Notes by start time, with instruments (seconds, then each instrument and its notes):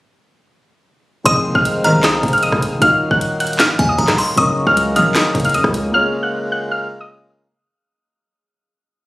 1.24 808-style bass F1, harmonium D#3 G#3 C4 F5, grand piano F3 C4 D#4 G#4, synth bell C6, synth pluck D#6, kick, closed hi-hat
1.45 808-style bass F#1
1.55 808-style bass F1, synth pluck F6, kick
1.65 closed hi-hat
1.84 string section C2 G#2 D#3, synth bell A#5, synth pluck F6, closed hi-hat
1.94 808-style bass C2
2.03 synth pluck D#6, snare, clap, closed hi-hat
2.23 808-style bass F1, kick, closed hi-hat
2.28 closed hi-hat
2.33 synth pluck F6, closed hi-hat
2.38 closed hi-hat
2.43 808-style bass C2, synth pluck D#6, closed hi-hat
2.52 808-style bass F1, kick, cross-stick
2.62 closed hi-hat
2.72 808-style bass G#1
2.80 808-style bass D#1, grand piano D#3 D#4 F4 F#4, harmonium F#3 A#3, synth pluck F6, kick, closed hi-hat
3.11 808-style bass D#1, synth pluck F#6, kick
3.21 closed hi-hat
3.40 synth pluck F#6, closed hi-hat
3.47 closed hi-hat
3.53 closed hi-hat
3.59 808-style bass C#1, synth pluck F6, snare, clap, closed hi-hat
3.79 808-style bass D#2, synth bell G#5, kick, closed hi-hat
3.89 synth pluck D#6
3.98 808-style bass D#1, synth bell A#5, kick, closed hi-hat
4.08 kick, cross-stick, snare, clap, closed hi-hat
4.18 synth bell C6, open hi-hat
4.36 808-style bass F#1, harmonium C#3 A#3 D#4, grand piano F#3 C#4 D#4 A#4, synth bell C#6, synth pluck D#6, kick, closed hi-hat
4.67 808-style bass C#2, synth pluck F6, kick
4.77 closed hi-hat
4.96 808-style bass F1, string section A#1 F#2 D#3, synth bell D#6, synth pluck F6, closed hi-hat
5.15 synth pluck D#6, snare, clap, closed hi-hat
5.35 808-style bass F#1, kick, closed hi-hat
5.40 closed hi-hat
5.45 synth pluck F6, closed hi-hat
5.50 closed hi-hat
5.54 808-style bass F#2, synth pluck D#6, closed hi-hat
5.64 808-style bass C#2, kick, cross-stick
5.74 closed hi-hat
5.92 harmonium C#3 G#3 F4, grand piano A#3 F4 G#4 C#5, synth pluck F6
6.23 synth pluck F#6
6.52 synth pluck F#6
6.71 synth pluck F6
7.01 synth pluck D#6